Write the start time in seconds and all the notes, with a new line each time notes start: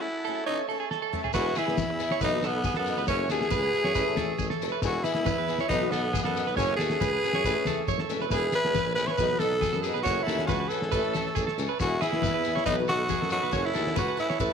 Already playing: A4 F#5 G#5
0.01 E4
0.25 F#3 A3 C#4 G#4 A4
0.43 D#4 C#5 E5 A5
0.48 E3 A3 C#4 A4
0.69 A3 C#4 A4
0.80 G#4
0.91 A4, snare
1.02 A4
1.13 E3 A3 C#4 A4, mid tom
1.24 G#4, floor tom
1.33 E1 E3 B3 E4 F#4 G#4 B4 E5 G#5, kick, snare, crash, muted conga, shekere
1.55 E3 B3 E4 G#4, snare, muted conga, shekere
1.60 G#4
1.67 E1 B3 E4 G#4, snare
1.77 kick, snare, high conga, shekere
1.88 E2, muted clean electric guitar stroke
1.99 E3 E4 G#4, muted steel-string acoustic guitar stroke, shekere
2.11 C#5, snare
2.21 B1 F#3 B3 D#4 F#4 B4 D#5 F#5, kick, muted conga, high conga, shekere
2.33 B3 D#4 F#4
2.42 B1 F#3 B3 D#4 A4, snare, shekere
2.54 snare
2.64 G#4, kick, high conga, shekere
2.74 F#2 A4, snare
2.78 B3
2.86 F#3 B3 D#4, muted conga, shekere
2.90 F#4
2.97 C#2 B4, snare
3.07 F#1 F#3 A3 C#4 G#4 C#5 G#5, kick, snare, muted conga, shekere
3.29 D#2 F#3 A3 C#4 G#4 A4, snare, muted conga, shekere
3.41 A3 G#4, snare
3.50 C#2 B4, kick, snare, high conga, shekere
3.63 B4
3.73 F#3 A3 G#4
3.84 F#2 C#5, snare
3.93 A1 E3 A3 C#4 A4 B4 C#5 E5, kick, muted conga, shekere
4.07 A1 A3 C#4 A4
4.16 A3 C#4 A4, muted steel-string acoustic guitar stroke, snare, high conga, low conga, shekere
4.38 A1 G#4, kick, high conga, shekere
4.50 A4, snare
4.61 F1 E3 A3 C#4 A4, muted conga, shekere
4.72 B4
4.82 E1 E3 B3 E4 F#4 G#4 B4 G#5, muted clean electric guitar stroke, kick, snare, muted conga, shekere
5.04 E3 B3 E4 G#4, muted clean electric guitar stroke, snare, muted conga, shekere
5.15 E1 B3 E4 G#4, snare
5.25 B4, kick, snare, high conga, shekere
5.38 E2 B4
5.47 E3 B3 E4 G#4, shekere
5.58 C#5, snare
5.68 B1 F#3 B3 D#4 F#4 B4 D#5 F#5, kick, muted conga, high conga, shekere
5.81 B3 F#4
5.91 B1 F#3 B3 D#4 F#4 A4, snare, shekere
6.03 snare
6.13 G#4, kick, high conga, shekere
6.23 F#2 B3 A4, snare
6.36 F#3 B3 D#4 F#4, muted conga, shekere
6.47 B1 B4, snare
6.55 F#1 F#3 A3 C#4 G#4 C#5 F#5 G#5, kick, snare, muted conga
6.59 shekere
6.76 D#2 F#3 A3 G#4 A4, snare, shekere
6.81 C#4 G#4, muted conga
6.90 A3 C#4 G#4, snare
7.01 C#2 B4, kick, snare, high conga, shekere
7.13 B4
7.22 F#3 A3 C#4 G#4, shekere
7.33 F#2 C#5, snare
7.43 A1 E3 A3 C#4 A4 B4 C#5 E5, kick, muted conga, shekere
7.56 A3 C#4, muted steel-string acoustic guitar stroke
7.65 E3 A3 C#4 A4, snare, high conga, low conga, shekere
7.70 A4
7.88 F#1 C#5, kick, high conga, shekere
7.99 A4, snare
8.09 E1 E3 A3 C#4 A4, muted conga, shekere
8.20 B4, snare
8.30 E1 B3 E4 G#4 B4 E5 G#5, muted steel-string acoustic guitar stroke, kick, snare, muted conga, shekere
8.52 E3 B3 E4 G#4 B4, snare, muted conga, shekere
8.64 E1 B3 E4 G#4, snare
8.74 B4, kick, snare, high conga, shekere
8.86 A#1 B4
8.95 E3 B3 E4 G#4 B4, shekere
9.07 C#5, snare
9.11 B4
9.18 B1 F#3 B3 D#4 F#4 B4 D#5 F#5, kick, muted conga, high conga, shekere
9.30 B3 D#4 F#4
9.39 B1 F#3 B3 D#4 F#4 A4, snare, shekere
9.52 snare
9.61 G#4, kick, high conga, shekere
9.73 F#2 A4, snare
9.82 F#3 B3 G#4, muted conga, shekere
9.87 D#4 F#4
9.94 B1 B4, snare
10.03 F#1 F#4 A4 C#5 G#5, kick, snare, muted conga, shekere
10.07 F#3 A3 C#4, muted steel-string acoustic guitar stroke
10.23 D#2 E4 A4, muted conga
10.27 F#3 A3 C#4 G#4, snare, shekere
10.39 A3 C#4 G#4, snare
10.47 C#2 F#4 B4, kick, snare, high conga, shekere
10.60 B4
10.68 F#3 A3 A4, shekere
10.72 C#4 G#4
10.81 G#1, snare
10.92 A1 E3 A3 C#4 A4 B4 C#5 E5 A5, kick, muted conga, shekere
11.03 A1 C#4 A4
11.13 E3 A3 C#4 A4, snare, high conga, shekere
11.26 snare
11.35 A1 G#4, kick, high conga, shekere
11.47 A4, snare
11.57 C#2 E3 C#4 A4, muted steel-string acoustic guitar stroke, muted conga, shekere
11.69 B4
11.79 E1 E3 B3 E4 F#4 G#4 B4 G#5, muted clean electric guitar stroke, kick, snare, muted conga, shekere
12.01 E3 B3 E4 G#4, snare, muted conga, shekere
12.12 E1 B3 E4 G#4, snare
12.22 B4, kick, snare, high conga, shekere
12.34 E2 B4
12.44 E3 B3 E4 G#4, shekere
12.56 C#5, snare
12.66 B1 F#3 B3 D#4 F#4 B4 D#5 F#5, kick, muted conga, high conga, shekere
12.79 B3 D#4 F#4
12.88 B1 F#3 B3 D#4 F#4 A4, snare, shekere
13.01 snare
13.09 G#4, kick, high conga, shekere
13.21 F#2 A4, snare
13.30 F#3 B3 D#4 F#4, muted conga, shekere
13.43 B1 B4, snare
13.51 F#1 F#3 A3 C#4 G#4 A4 C#5 G#5, kick, snare, muted conga, shekere
13.66 E4
13.73 D#2 F#3 A3 C#4 G#4 A4, snare, muted conga, shekere
13.86 A3 C#4 G#4, snare
13.96 C#2 F#4 B4, kick, snare, high conga, shekere
14.08 B4
14.17 A3 C#4 E4 G#4, muted steel-string acoustic guitar stroke, shekere
14.30 C#5, snare
14.39 A1 E3 A3 C#4 A4 B4 C#5 E5 A5, kick, muted conga, low conga, shekere